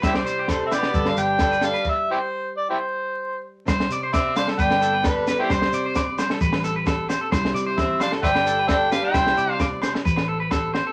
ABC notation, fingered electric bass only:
X:1
M:4/4
L:1/8
Q:1/4=132
K:C
V:1 name="Fingered electric bass" clef=bass
C,, z3 G,,, G,,,3 | z8 | C,, C,3 G,,,4 | C,, C,3 A,,,4 |
C,, C,3 G,,,4 | C,, C,3 A,,,4 |]